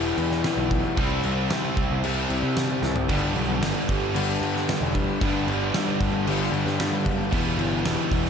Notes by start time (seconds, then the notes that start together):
Already playing: E1 E2 B2 E3 G3 B3 E4 G4 B4 G5
0.17 E2, crash
0.31 snare
0.44 snare, crash
0.57 B1
0.71 kick, crash
0.97 C2 C3 G3 C4 E4 C5, kick, crash
1.23 C2, crash
1.50 snare, crash
1.77 C2, kick, crash
1.90 C2
2.04 C3 G3 C4, crash
2.30 C2, crash
2.43 C3
2.56 snare, crash
2.82 C2, snare
2.96 floor tom
3.08 G1 G2 D3 G3 B3 D4 G4 B4 G5, kick, crash
3.35 B1 G2 D3 G3, crash
3.61 G1 G2 D3 G3, snare, crash
3.88 G1 G2 D3 G3, kick, crash
4.15 G2 D3 G3, crash
4.41 G2 D3 G3, crash
4.56 snare
4.69 G2 D3 G3, snare, crash
4.81 E1
4.94 G2 D3 G3, kick, crash
5.21 G2 D3 G3 B3 D4, kick, crash
5.47 G1 G2 D3 G3, crash
5.74 G2 D3 G3, snare, crash
6.00 G1 G2 D3 G3, kick, crash
6.13 G1
6.27 G2 D3 G3, crash
6.52 G1 G2 D3 G3, crash
6.66 G2, snare
6.80 G2 D3 G3, snare, crash
7.06 F#1 G2 D3 G3, kick, crash
7.31 E1 E2 B2 E3 G3 B3 E4, kick, crash
7.59 G1 E2 B2 E3, crash
7.85 E1 E2 B2 E3, snare, crash
8.11 E1 E2 B2 E3, kick, crash
8.25 snare